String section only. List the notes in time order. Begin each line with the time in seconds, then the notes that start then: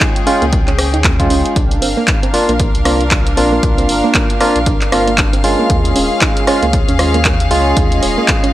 Already playing: C#4 G#4 F5
1.56 D4
1.76 A#4
1.86 F5
5.70 C#4
5.81 G#4